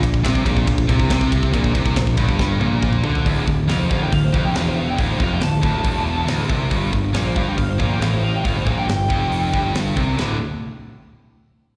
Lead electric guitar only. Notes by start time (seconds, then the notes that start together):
3.69 F5
3.79 C5
3.90 F5
4.02 G5
4.13 F5
4.25 C5
4.36 F5
4.45 G5
4.56 F5
4.68 C5
4.79 F5
4.89 G5
5.00 F5
5.12 C5
5.23 F5
5.33 G5
5.43 A5
7.16 F5
7.26 C5
7.37 F5
7.48 G5
7.57 F5
7.69 C5
7.79 F5
7.90 G5
8.02 F5
8.13 C5
8.23 F5
8.35 G5
8.45 F5
8.58 C5
8.68 F5
8.79 G5
8.89 G5